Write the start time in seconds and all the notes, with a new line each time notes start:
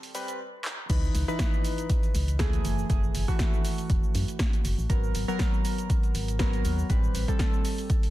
Already playing: G3 C4 A4
0.03 open hi-hat, cabasa
0.15 G3 C4 B4, closed hi-hat, open hi-hat, cabasa
0.28 closed hi-hat, cabasa
0.65 clap
0.90 C#2 E3 D#4 B4, kick, closed hi-hat, crash, cabasa
1.04 cabasa
1.15 C#2, closed hi-hat, open hi-hat, cabasa
1.28 E3 D#4 B4, cabasa
1.39 kick, snare, closed hi-hat, cabasa
1.54 cabasa
1.65 closed hi-hat, open hi-hat, cabasa
1.78 closed hi-hat, cabasa
1.90 kick, closed hi-hat, cabasa
2.03 closed hi-hat, cabasa
2.15 C#2, closed hi-hat, open hi-hat, cabasa
2.28 closed hi-hat, cabasa
2.39 E3 A3 G#4, kick, snare, closed hi-hat, cabasa
2.53 closed hi-hat, cabasa
2.65 F#1, closed hi-hat, open hi-hat, cabasa
2.79 cabasa
2.90 F#1 E3 A3 G#4, kick, closed hi-hat, cabasa
3.04 cabasa
3.15 F#1, closed hi-hat, open hi-hat, cabasa
3.28 E3 A3 F#4, kick, closed hi-hat, cabasa
3.39 kick, snare, closed hi-hat, cabasa
3.54 cabasa
3.65 open hi-hat, cabasa
3.78 closed hi-hat, cabasa
3.90 E1, kick, closed hi-hat, cabasa
4.04 cabasa
4.15 F#2, closed hi-hat, open hi-hat, cabasa
4.28 closed hi-hat, cabasa
4.39 kick, snare, closed hi-hat, cabasa
4.53 closed hi-hat, cabasa
4.65 F#1, closed hi-hat, open hi-hat, cabasa
4.78 A1, cabasa
4.90 G#1 F#3 B3 A#4, kick, closed hi-hat, cabasa
5.04 cabasa
5.15 G#1, closed hi-hat, open hi-hat, cabasa
5.28 F#3 B3 A#4, cabasa
5.39 kick, snare, closed hi-hat, cabasa
5.54 cabasa
5.65 closed hi-hat, open hi-hat, cabasa
5.78 closed hi-hat, cabasa
5.90 kick, closed hi-hat, cabasa
6.03 closed hi-hat, cabasa
6.15 G#1, closed hi-hat, open hi-hat, cabasa
6.28 closed hi-hat, cabasa
6.39 F#3 B3 A#4, kick, snare, closed hi-hat, cabasa
6.53 closed hi-hat, cabasa
6.65 D#2, closed hi-hat, open hi-hat, cabasa
6.79 cabasa
6.90 A1 G3 C4 B4, kick, closed hi-hat, cabasa
7.04 cabasa
7.15 A1, closed hi-hat, open hi-hat, cabasa
7.28 G3 C4 A4, kick, closed hi-hat, cabasa
7.39 kick, snare, closed hi-hat, cabasa
7.54 cabasa
7.65 open hi-hat, cabasa
7.78 closed hi-hat, cabasa
7.90 kick, closed hi-hat, cabasa
8.03 open hi-hat, cabasa